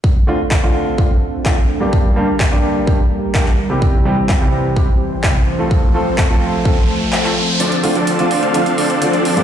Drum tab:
HH |----------------|----------------|----------------|----------------|
CP |----x-------x---|----x-------xx--|----x-------x---|----x-------xx--|
BD |o---o---o---o---|o---o---o---o---|o---o---o---o---|o---o---o-------|

HH |xxoxxxoxxxoxxxox|
CP |----------------|
BD |----------------|